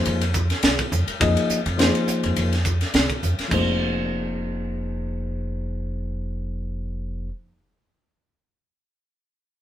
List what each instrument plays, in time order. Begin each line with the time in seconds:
Already playing: tine electric piano F3 A#3 D#4 G#4 C5
0.05 upright bass F2, ride
0.21 ride
0.34 kick, hi-hat pedal
0.50 snare, ride
0.63 upright bass C2, snare, ride
0.79 kick, ride
0.92 upright bass F2, hi-hat pedal
1.08 muted upright bass stroke, ride
1.20 upright bass F2, tine electric piano F3 A#3 D#4 G#4 D#5, kick, ride
1.37 ride
1.50 muted upright bass stroke, hi-hat pedal
1.66 upright bass F2, ride
1.78 tine electric piano F3 A#3 D#4 G#4 C5, snare, ride
1.95 ride
2.08 muted upright bass stroke, hi-hat pedal
2.23 upright bass F2, ride
2.36 upright bass F2, ride
2.52 snare, ride
2.65 kick, hi-hat pedal
2.81 snare, ride
2.94 upright bass C2, snare, ride
3.10 kick, ride
3.23 upright bass F2, hi-hat pedal
3.39 muted upright bass stroke, snare, ride
3.48 upright bass F1, tine electric piano F3 A#3 D#4, kick, crash
3.53 tine electric piano G#4 C5